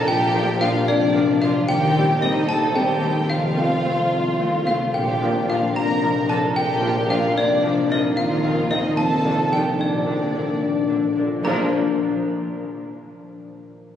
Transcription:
Already playing: F3 D4 F4
0.07 A#1 A#2 G4 G5
0.34 F3 D4 A#4
0.61 F3 D4 F4 F5
0.87 F1 F2 D4 A#4 D5
1.15 F3 D4
1.42 F3 D4 F4 A#4 F5
1.68 D#2 D#3 G4 G5
1.95 G3 C4 G4
2.22 G3 C4 D#4 C5 D#5
2.48 D#2 G4 A4 A5
2.75 G3 C4 G4 G5
3.01 G3 C4 G4
3.29 F1 F2 F3 F4 F5
3.57 A3 C4 A4
3.85 A3 C4 C5
4.11 C2 F2 A4
4.39 D#2 A3 C4
4.66 D2 A3 C4 F4 A4 F5
4.94 A#1 A#2 G4 G5
5.21 F3 D4 A#4
5.49 F3 D4 F4 F5
5.76 F1 F2 A#4 A#5
6.02 F3 D4
6.29 F3 D4 A4 A5
6.56 A#1 A#2 G4 G5
6.83 F3 D4 A#4
7.10 F3 D4 F4 F5
7.37 F1 F2 D4 A#4 D5
7.64 F3 D4
7.90 F3 D4 D#4 A#4 D#5
8.17 D#2 D#3 F4 F5
8.44 D#3 C4 D#4
8.71 D#3 C4 D#4 C5 D#5
8.97 F1 F2 F3 A4 A5
9.25 D#3 D4 D#4
9.52 D#3 D4 D#4 G4 D5 G5
9.79 A#1 A#2 D4 D5
10.06 D3 D4 D5
10.34 D3 D4
10.62 F1 A#2 D5
10.89 A2 D3 F3 D4
11.17 A#2 D3 D4 D5
11.41 A#1 A#2 F3 A#3 D4 A#5
11.45 A#1 D4 A#4 D5

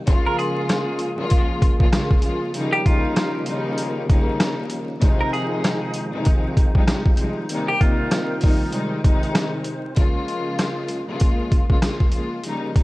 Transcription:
0.06 C#3 F3 G#3 A#3 F4 G#4, kick, closed hi-hat
0.26 A#4
0.38 G#4, closed hi-hat
0.69 cross-stick, snare, closed hi-hat
0.99 closed hi-hat
1.18 C#3 F3 G#3 A#3 F4
1.30 kick, closed hi-hat
1.62 kick, closed hi-hat
1.78 C#3 F3 G#3 A#3 F4, kick
1.92 C#3 F3 G#3 A#3 F4, cross-stick, snare, closed hi-hat
2.11 kick
2.22 C#3 F3 G#3 A#3 F4, closed hi-hat
2.53 C#3 D#3 F3 G3 A#3 C#4 D#4 G4, closed hi-hat
2.73 G4
2.85 C#3 F3 G3 A#3 D#4 F4, kick, closed hi-hat
3.16 cross-stick, snare, closed hi-hat
3.46 C#3 F3 G3 A#3 D#4, closed hi-hat
3.78 closed hi-hat
4.08 C#3 F3 G3 A#3 D#4, kick, closed hi-hat
4.40 cross-stick, snare, closed hi-hat
4.70 closed hi-hat
5.00 C3 D#3 F3 G#3 C4 D#4 F4 G5, kick, closed hi-hat
5.21 A#4
5.33 G#4, closed hi-hat
5.64 cross-stick, snare, closed hi-hat
5.94 closed hi-hat
6.12 C3 D#3 F3 G#3 D#4
6.25 kick, closed hi-hat
6.57 kick, closed hi-hat
6.74 C3 F3 G3 G#3 D#4, kick
6.86 C3 F3 G3 G#3 D#4, cross-stick, snare, closed hi-hat
7.06 kick
7.17 C3 F3 G3 G#3 D#4, closed hi-hat
7.48 C3 D#3 G3 A#3 C4 D#4 A#4, closed hi-hat
7.68 G4
7.80 C3 D#3 G3 A#3 D#4 F4, kick, closed hi-hat
8.11 cross-stick, snare, closed hi-hat
8.41 C3 D#3 G3 A#3 D#4, kick, open hi-hat
8.72 C3 D#3 G3 G#3 D#4 C5, closed hi-hat
9.03 C3 D#3 G3 G#3 D#4, kick, closed hi-hat
9.23 closed hi-hat
9.35 cross-stick, snare, closed hi-hat
9.64 closed hi-hat
9.95 C#3 F3 G#3 A#3 F4, kick, closed hi-hat
10.28 closed hi-hat
10.59 cross-stick, snare, closed hi-hat
10.88 closed hi-hat
11.07 C#3 F3 G#3 A#3 F4
11.20 kick, closed hi-hat
11.52 kick, closed hi-hat
11.68 C#3 F3 G#3 A#3 F4, kick
11.82 C#3 F3 G#3 A#3 F4, cross-stick, snare, closed hi-hat
12.00 kick
12.12 C#3 F3 G#3 A#3 F4, closed hi-hat
12.43 C#3 F3 G3 A#3 D#4, closed hi-hat
12.75 C#3 F3 G3 A#3 D#4, kick, closed hi-hat

